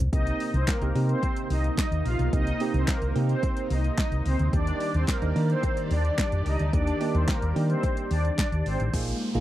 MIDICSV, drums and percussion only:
0, 0, Header, 1, 2, 480
1, 0, Start_track
1, 0, Key_signature, -3, "minor"
1, 0, Tempo, 550459
1, 112, Time_signature, 4, 2, 24, 8
1, 8199, End_track
2, 0, Start_track
2, 0, Title_t, "Drums"
2, 112, Note_on_c, 9, 36, 116
2, 112, Note_on_c, 9, 42, 68
2, 199, Note_off_c, 9, 36, 0
2, 199, Note_off_c, 9, 42, 0
2, 234, Note_on_c, 9, 42, 57
2, 321, Note_off_c, 9, 42, 0
2, 351, Note_on_c, 9, 46, 74
2, 438, Note_off_c, 9, 46, 0
2, 472, Note_on_c, 9, 42, 55
2, 559, Note_off_c, 9, 42, 0
2, 591, Note_on_c, 9, 36, 117
2, 591, Note_on_c, 9, 39, 126
2, 591, Note_on_c, 9, 42, 81
2, 597, Note_on_c, 9, 38, 101
2, 678, Note_off_c, 9, 36, 0
2, 678, Note_off_c, 9, 42, 0
2, 679, Note_off_c, 9, 39, 0
2, 684, Note_off_c, 9, 38, 0
2, 712, Note_on_c, 9, 42, 53
2, 799, Note_off_c, 9, 42, 0
2, 833, Note_on_c, 9, 46, 74
2, 920, Note_off_c, 9, 46, 0
2, 952, Note_on_c, 9, 42, 53
2, 1039, Note_off_c, 9, 42, 0
2, 1070, Note_on_c, 9, 42, 72
2, 1073, Note_on_c, 9, 36, 104
2, 1158, Note_off_c, 9, 42, 0
2, 1160, Note_off_c, 9, 36, 0
2, 1190, Note_on_c, 9, 42, 58
2, 1277, Note_off_c, 9, 42, 0
2, 1311, Note_on_c, 9, 46, 76
2, 1398, Note_off_c, 9, 46, 0
2, 1432, Note_on_c, 9, 42, 55
2, 1520, Note_off_c, 9, 42, 0
2, 1551, Note_on_c, 9, 36, 109
2, 1551, Note_on_c, 9, 42, 70
2, 1554, Note_on_c, 9, 39, 106
2, 1560, Note_on_c, 9, 38, 89
2, 1638, Note_off_c, 9, 36, 0
2, 1639, Note_off_c, 9, 42, 0
2, 1641, Note_off_c, 9, 39, 0
2, 1647, Note_off_c, 9, 38, 0
2, 1674, Note_on_c, 9, 42, 52
2, 1762, Note_off_c, 9, 42, 0
2, 1792, Note_on_c, 9, 46, 74
2, 1879, Note_off_c, 9, 46, 0
2, 1912, Note_on_c, 9, 42, 65
2, 1999, Note_off_c, 9, 42, 0
2, 2031, Note_on_c, 9, 36, 113
2, 2031, Note_on_c, 9, 42, 68
2, 2118, Note_off_c, 9, 42, 0
2, 2119, Note_off_c, 9, 36, 0
2, 2153, Note_on_c, 9, 42, 59
2, 2240, Note_off_c, 9, 42, 0
2, 2269, Note_on_c, 9, 46, 77
2, 2356, Note_off_c, 9, 46, 0
2, 2391, Note_on_c, 9, 42, 51
2, 2478, Note_off_c, 9, 42, 0
2, 2510, Note_on_c, 9, 36, 120
2, 2510, Note_on_c, 9, 39, 127
2, 2510, Note_on_c, 9, 42, 83
2, 2516, Note_on_c, 9, 38, 100
2, 2597, Note_off_c, 9, 42, 0
2, 2598, Note_off_c, 9, 36, 0
2, 2598, Note_off_c, 9, 39, 0
2, 2604, Note_off_c, 9, 38, 0
2, 2631, Note_on_c, 9, 42, 52
2, 2719, Note_off_c, 9, 42, 0
2, 2752, Note_on_c, 9, 46, 70
2, 2839, Note_off_c, 9, 46, 0
2, 2871, Note_on_c, 9, 42, 54
2, 2958, Note_off_c, 9, 42, 0
2, 2990, Note_on_c, 9, 42, 76
2, 2992, Note_on_c, 9, 36, 109
2, 3077, Note_off_c, 9, 42, 0
2, 3080, Note_off_c, 9, 36, 0
2, 3110, Note_on_c, 9, 42, 59
2, 3197, Note_off_c, 9, 42, 0
2, 3230, Note_on_c, 9, 46, 75
2, 3317, Note_off_c, 9, 46, 0
2, 3352, Note_on_c, 9, 42, 56
2, 3439, Note_off_c, 9, 42, 0
2, 3470, Note_on_c, 9, 42, 73
2, 3471, Note_on_c, 9, 36, 113
2, 3472, Note_on_c, 9, 39, 113
2, 3478, Note_on_c, 9, 38, 90
2, 3557, Note_off_c, 9, 42, 0
2, 3558, Note_off_c, 9, 36, 0
2, 3560, Note_off_c, 9, 39, 0
2, 3566, Note_off_c, 9, 38, 0
2, 3592, Note_on_c, 9, 42, 53
2, 3679, Note_off_c, 9, 42, 0
2, 3711, Note_on_c, 9, 46, 78
2, 3798, Note_off_c, 9, 46, 0
2, 3831, Note_on_c, 9, 42, 62
2, 3919, Note_off_c, 9, 42, 0
2, 3951, Note_on_c, 9, 36, 115
2, 3951, Note_on_c, 9, 42, 69
2, 4038, Note_off_c, 9, 36, 0
2, 4038, Note_off_c, 9, 42, 0
2, 4073, Note_on_c, 9, 42, 59
2, 4160, Note_off_c, 9, 42, 0
2, 4189, Note_on_c, 9, 46, 74
2, 4276, Note_off_c, 9, 46, 0
2, 4311, Note_on_c, 9, 42, 51
2, 4398, Note_off_c, 9, 42, 0
2, 4430, Note_on_c, 9, 42, 80
2, 4431, Note_on_c, 9, 36, 121
2, 4431, Note_on_c, 9, 39, 127
2, 4437, Note_on_c, 9, 38, 98
2, 4517, Note_off_c, 9, 42, 0
2, 4518, Note_off_c, 9, 36, 0
2, 4518, Note_off_c, 9, 39, 0
2, 4524, Note_off_c, 9, 38, 0
2, 4552, Note_on_c, 9, 42, 51
2, 4639, Note_off_c, 9, 42, 0
2, 4673, Note_on_c, 9, 46, 69
2, 4760, Note_off_c, 9, 46, 0
2, 4793, Note_on_c, 9, 42, 51
2, 4880, Note_off_c, 9, 42, 0
2, 4911, Note_on_c, 9, 42, 75
2, 4913, Note_on_c, 9, 36, 105
2, 4998, Note_off_c, 9, 42, 0
2, 5000, Note_off_c, 9, 36, 0
2, 5031, Note_on_c, 9, 42, 60
2, 5118, Note_off_c, 9, 42, 0
2, 5151, Note_on_c, 9, 46, 76
2, 5238, Note_off_c, 9, 46, 0
2, 5272, Note_on_c, 9, 42, 55
2, 5359, Note_off_c, 9, 42, 0
2, 5391, Note_on_c, 9, 36, 109
2, 5391, Note_on_c, 9, 42, 73
2, 5393, Note_on_c, 9, 39, 109
2, 5399, Note_on_c, 9, 38, 84
2, 5478, Note_off_c, 9, 42, 0
2, 5479, Note_off_c, 9, 36, 0
2, 5481, Note_off_c, 9, 39, 0
2, 5487, Note_off_c, 9, 38, 0
2, 5513, Note_on_c, 9, 42, 55
2, 5600, Note_off_c, 9, 42, 0
2, 5631, Note_on_c, 9, 46, 76
2, 5719, Note_off_c, 9, 46, 0
2, 5750, Note_on_c, 9, 42, 59
2, 5837, Note_off_c, 9, 42, 0
2, 5871, Note_on_c, 9, 36, 111
2, 5871, Note_on_c, 9, 42, 70
2, 5958, Note_off_c, 9, 42, 0
2, 5959, Note_off_c, 9, 36, 0
2, 5993, Note_on_c, 9, 42, 59
2, 6080, Note_off_c, 9, 42, 0
2, 6110, Note_on_c, 9, 46, 74
2, 6197, Note_off_c, 9, 46, 0
2, 6232, Note_on_c, 9, 42, 53
2, 6319, Note_off_c, 9, 42, 0
2, 6351, Note_on_c, 9, 36, 118
2, 6351, Note_on_c, 9, 39, 125
2, 6351, Note_on_c, 9, 42, 78
2, 6357, Note_on_c, 9, 38, 100
2, 6438, Note_off_c, 9, 36, 0
2, 6438, Note_off_c, 9, 39, 0
2, 6438, Note_off_c, 9, 42, 0
2, 6445, Note_off_c, 9, 38, 0
2, 6473, Note_on_c, 9, 42, 52
2, 6560, Note_off_c, 9, 42, 0
2, 6594, Note_on_c, 9, 46, 73
2, 6681, Note_off_c, 9, 46, 0
2, 6712, Note_on_c, 9, 42, 53
2, 6799, Note_off_c, 9, 42, 0
2, 6830, Note_on_c, 9, 42, 72
2, 6833, Note_on_c, 9, 36, 109
2, 6917, Note_off_c, 9, 42, 0
2, 6920, Note_off_c, 9, 36, 0
2, 6950, Note_on_c, 9, 42, 55
2, 7037, Note_off_c, 9, 42, 0
2, 7070, Note_on_c, 9, 46, 79
2, 7157, Note_off_c, 9, 46, 0
2, 7192, Note_on_c, 9, 42, 56
2, 7279, Note_off_c, 9, 42, 0
2, 7310, Note_on_c, 9, 42, 67
2, 7311, Note_on_c, 9, 36, 107
2, 7312, Note_on_c, 9, 39, 107
2, 7318, Note_on_c, 9, 38, 90
2, 7397, Note_off_c, 9, 42, 0
2, 7398, Note_off_c, 9, 36, 0
2, 7399, Note_off_c, 9, 39, 0
2, 7405, Note_off_c, 9, 38, 0
2, 7433, Note_on_c, 9, 42, 54
2, 7520, Note_off_c, 9, 42, 0
2, 7552, Note_on_c, 9, 46, 75
2, 7639, Note_off_c, 9, 46, 0
2, 7672, Note_on_c, 9, 42, 63
2, 7759, Note_off_c, 9, 42, 0
2, 7791, Note_on_c, 9, 42, 65
2, 7791, Note_on_c, 9, 49, 86
2, 7792, Note_on_c, 9, 36, 105
2, 7879, Note_off_c, 9, 36, 0
2, 7879, Note_off_c, 9, 42, 0
2, 7879, Note_off_c, 9, 49, 0
2, 7915, Note_on_c, 9, 42, 55
2, 8002, Note_off_c, 9, 42, 0
2, 8152, Note_on_c, 9, 42, 52
2, 8199, Note_off_c, 9, 42, 0
2, 8199, End_track
0, 0, End_of_file